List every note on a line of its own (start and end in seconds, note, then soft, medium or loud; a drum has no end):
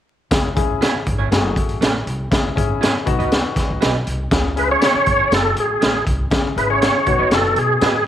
0.31 0.73 C#2 loud
0.31 1.02 C#3 medium
0.31 0.48 C#4 medium
0.31 0.48 E4 medium
0.31 0.48 G#4 medium
0.31 kick loud
0.31 snare medium
0.31 closed hi-hat medium
0.56 1.23 C#4 medium
0.56 1.24 E4 medium
0.56 1.24 G#4 medium
0.56 kick medium
0.56 closed hi-hat medium
0.81 0.94 E4 medium
0.81 0.94 G#4 medium
0.81 0.94 C#5 medium
0.81 snare loud
0.81 closed hi-hat medium
0.95 muted upright bass stroke soft
1.06 1.27 G#1 medium
1.06 kick medium
1.06 closed hi-hat medium
1.19 1.29 E4 medium
1.19 1.29 G#4 medium
1.19 1.28 C#5 medium
1.31 1.52 F#1 loud
1.31 2.11 A3 medium
1.31 2.11 F#4 medium
1.31 2.12 G#4 medium
1.31 snare loud
1.31 closed hi-hat medium
1.56 1.77 A1 medium
1.56 kick medium
1.56 closed hi-hat medium
1.69 closed hi-hat soft
1.81 2.02 A1 medium
1.81 1.94 A3 medium
1.81 1.94 C#4 medium
1.81 1.94 G#4 medium
1.81 snare loud
1.81 closed hi-hat medium
2.07 2.27 C2 medium
2.07 closed hi-hat medium
2.31 2.52 C#2 medium
2.31 3.02 C#3 medium
2.31 2.48 C#4 medium
2.31 2.48 E4 medium
2.31 2.48 G#4 medium
2.31 kick loud
2.31 snare loud
2.31 closed hi-hat medium
2.56 2.88 G#1 medium
2.56 3.06 C#4 medium
2.56 3.06 E4 medium
2.56 3.07 G#4 medium
2.56 kick medium
2.56 closed hi-hat medium
2.81 2.94 E4 medium
2.81 2.94 G#4 medium
2.81 2.94 C#5 medium
2.81 snare loud
2.81 closed hi-hat loud
3.06 3.17 B1 medium
3.06 3.77 B2 medium
3.06 3.86 B3 medium
3.06 3.86 D#4 medium
3.06 3.86 F#4 loud
3.06 kick medium
3.06 closed hi-hat medium
3.19 3.40 C#2 medium
3.19 3.29 F#4 soft
3.19 3.29 B4 medium
3.19 3.29 D#5 medium
3.19 closed hi-hat soft
3.31 snare loud
3.31 closed hi-hat medium
3.56 3.67 D#2 medium
3.56 kick medium
3.56 snare soft
3.56 closed hi-hat medium
3.70 3.80 C#2 medium
3.81 4.03 B1 medium
3.81 3.94 F#4 medium
3.81 3.94 B4 medium
3.81 3.94 D#5 medium
3.81 snare loud
3.81 closed hi-hat medium
4.07 4.28 C2 medium
4.07 closed hi-hat medium
4.31 4.73 C#2 medium
4.31 5.03 C#3 medium
4.31 4.48 C#4 medium
4.31 4.48 E4 medium
4.31 4.48 G#4 medium
4.31 kick loud
4.31 snare loud
4.31 closed hi-hat medium
4.56 4.65 C#4 medium
4.56 4.65 E4 medium
4.56 4.65 G#4 medium
4.56 4.69 B4 medium
4.56 closed hi-hat medium
4.68 5.31 C#4 medium
4.68 5.31 E4 medium
4.68 5.30 G#4 medium
4.68 5.35 C#5 loud
4.81 4.94 E4 medium
4.81 4.94 G#4 medium
4.81 4.94 C#5 medium
4.81 snare loud
4.81 closed hi-hat loud
4.95 muted upright bass stroke soft
5.06 5.27 G#1 medium
5.06 kick medium
5.06 closed hi-hat medium
5.19 5.29 E4 soft
5.19 5.29 G#4 soft
5.19 5.29 C#5 medium
5.31 5.52 F#1 medium
5.31 6.11 A3 medium
5.31 6.11 F#4 medium
5.31 6.12 G#4 medium
5.31 5.56 A4 medium
5.31 snare medium
5.31 closed hi-hat medium
5.56 5.77 A1 medium
5.56 6.05 G#4 medium
5.56 closed hi-hat medium
5.81 6.02 A1 medium
5.81 5.94 A3 medium
5.81 5.94 C#4 medium
5.81 5.94 G#4 medium
5.81 snare loud
5.81 closed hi-hat medium
6.07 6.27 C2 medium
6.07 kick medium
6.07 closed hi-hat medium
6.31 6.52 C#2 medium
6.31 7.02 C#3 medium
6.31 6.48 C#4 medium
6.31 6.48 E4 medium
6.31 6.49 G#4 medium
6.31 kick loud
6.31 snare loud
6.31 closed hi-hat medium
6.56 6.87 G#1 medium
6.56 6.65 C#4 medium
6.56 6.65 E4 medium
6.56 6.65 G#4 medium
6.56 6.70 B4 medium
6.56 closed hi-hat medium
6.70 7.07 C#4 medium
6.70 7.07 E4 medium
6.70 7.07 G#4 medium
6.70 7.34 C#5 medium
6.81 6.94 E4 medium
6.81 6.94 G#4 medium
6.81 6.94 C#5 medium
6.81 snare loud
6.81 closed hi-hat medium
7.06 7.17 B1 medium
7.06 7.78 B2 medium
7.06 7.87 B3 medium
7.06 7.87 D#4 medium
7.06 7.87 F#4 medium
7.06 kick medium
7.06 closed hi-hat medium
7.19 7.33 C#2 medium
7.19 7.29 F#4 soft
7.19 7.29 B4 soft
7.19 7.29 D#5 medium
7.31 7.52 F#1 medium
7.31 7.59 A4 medium
7.31 snare loud
7.31 closed hi-hat medium
7.56 7.77 B2 medium
7.56 8.04 G#4 medium
7.56 closed hi-hat medium
7.81 8.02 A2 medium
7.81 7.94 F#4 medium
7.81 7.94 B4 medium
7.81 7.94 D#5 medium
7.81 snare loud
7.81 closed hi-hat medium